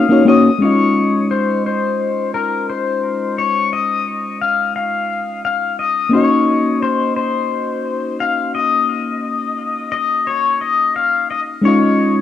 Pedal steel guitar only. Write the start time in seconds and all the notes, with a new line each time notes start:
Already playing: D#5 F5
0.28 D#5
0.62 C#5
1.31 C5
1.66 C5
2.34 A#4
2.69 C5
3.38 C#5
3.73 D#5
4.41 F5
4.76 F5
5.45 F5
5.79 D#5
6.13 C#5
6.83 C5
7.16 C5
8.20 F5
8.55 D#5
9.92 D#5
10.27 C#5
10.61 D#5
10.96 F5
11.31 D#5
11.65 C#5